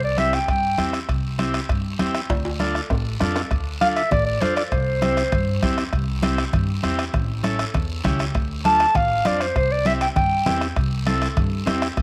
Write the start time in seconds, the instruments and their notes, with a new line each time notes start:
Already playing: upright bass C2
0.04 clarinet D5
0.17 transistor combo organ C4 E4 G4, clarinet E5, bombo rim, high conga, high timbale, short guiro
0.33 clarinet G5, bombo rim, high timbale, short guiro
0.48 upright bass G2, clarinet G5, bombo low, bombo rim, high conga, high timbale, long guiro
0.78 upright bass E2, transistor combo organ C4 E4 G4, bombo rim, high conga, high timbale, short guiro
0.93 bombo rim, high timbale, short guiro
1.09 upright bass C2, bombo low, bombo rim, high conga, high timbale, long guiro
1.38 transistor combo organ C4 E4 G4, bombo rim, high conga, high timbale, short guiro
1.54 bombo rim, high timbale, short guiro
1.69 upright bass G2, bombo low, bombo rim, high conga, high timbale, long guiro
1.99 upright bass E2, transistor combo organ C4 E4 G4, bombo rim, high conga, high timbale, short guiro
2.14 bombo rim, high timbale, short guiro
2.30 upright bass D2, bombo low, bombo rim, high conga, high timbale
2.45 high timbale
2.60 transistor combo organ D4 F4 A4, bombo rim, high conga, high timbale, short guiro
2.75 bombo rim, short guiro
2.90 upright bass A1, bombo low, bombo rim, high conga, low timbale, long guiro
3.20 upright bass F2, transistor combo organ D4 F4 A4, bombo rim, high conga, low timbale, short guiro
3.36 bombo rim, low timbale, short guiro
3.51 upright bass D2, bombo low, bombo rim, high conga, high timbale, long guiro
3.81 transistor combo organ D4 F4 A4, clarinet F5, bombo rim, high conga, high timbale, short guiro
3.96 clarinet E5, bombo rim, high timbale, short guiro
4.11 upright bass A1, clarinet D5, bombo low, bombo rim, high conga, low conga, high timbale, long guiro
4.26 clarinet D5
4.41 transistor combo organ D4 F4 A4, clarinet C5, bombo rim, high conga, high timbale, short guiro
4.56 clarinet D5, bombo rim, high timbale, short guiro
4.72 upright bass C2, clarinet C5, bombo low, bombo rim, high conga, high timbale, long guiro
5.02 transistor combo organ C4 E4 G4, bombo rim, high conga, high timbale, short guiro
5.17 bombo rim, high timbale, short guiro
5.32 upright bass G2, bombo low, bombo rim, high conga, low conga, high timbale, long guiro
5.62 upright bass E2, transistor combo organ C4 E4 G4, bombo low, bombo rim, high conga, high timbale, short guiro
5.78 bombo rim, high timbale, short guiro
5.93 upright bass C2, bombo low, bombo rim, high conga, high timbale, long guiro
6.22 transistor combo organ C4 E4 G4, bombo rim, high conga, high timbale, short guiro
6.38 bombo rim, high timbale, short guiro
6.53 upright bass G2, bombo low, bombo rim, high conga, low conga, high timbale, long guiro
6.83 upright bass E2, transistor combo organ C4 E4 G4, bombo rim, high conga, high timbale, short guiro
6.99 bombo rim, high timbale, short guiro
7.14 upright bass A1, bombo low, bombo rim, high conga, low conga, high timbale, long guiro
7.43 transistor combo organ C#4 E4 A4, bombo rim, high conga, high timbale, short guiro
7.59 bombo rim, high timbale, short guiro
7.74 upright bass E2, bombo low, bombo rim, high conga, low conga, high timbale, long guiro
8.04 upright bass C#2, transistor combo organ C#4 E4 G4, bombo low, bombo rim, high conga, low conga, high timbale, short guiro
8.19 bombo rim, high timbale, short guiro
8.34 upright bass D2, bombo low, bombo rim, high conga, high timbale, long guiro
8.65 transistor combo organ D4 F4 A4, clarinet A5, bombo rim, high conga, high timbale, short guiro
8.80 bombo rim, high timbale, short guiro
8.95 upright bass A1, clarinet F5, bombo low, bombo rim, high conga, low conga, high timbale, long guiro
9.25 upright bass F2, transistor combo organ D4 F4 C5, clarinet D5, bombo rim, high conga, high timbale, short guiro
9.40 clarinet C5, bombo rim, high timbale, short guiro
9.55 upright bass C2, clarinet C5, bombo low, bombo rim, high conga, high timbale, long guiro
9.72 clarinet D5
9.85 transistor combo organ C4 E4 G4, clarinet E5, bombo rim, high conga, high timbale, short guiro
10.01 clarinet G5, bombo rim, high timbale, short guiro
10.16 upright bass G2, clarinet G5, bombo low, bombo rim, high conga, low conga, high timbale, long guiro
10.46 upright bass E2, transistor combo organ C4 E4 G4, bombo rim, high conga, low conga, high timbale, low timbale, short guiro
10.61 bombo rim, high timbale, short guiro
10.76 upright bass C2, bombo low, bombo rim, high conga, high timbale, long guiro
11.06 transistor combo organ C4 E4 A4, bombo rim, high conga, high timbale, short guiro
11.22 bombo rim, high timbale, short guiro
11.37 upright bass G2, bombo low, bombo rim, high conga, low conga, high timbale, long guiro
11.66 upright bass E2, transistor combo organ C4 E4 G4, bombo rim, high conga, high timbale, low timbale, short guiro
11.82 bombo rim, high timbale, short guiro
11.97 upright bass D2, bombo low, bombo rim, high conga, high timbale, long guiro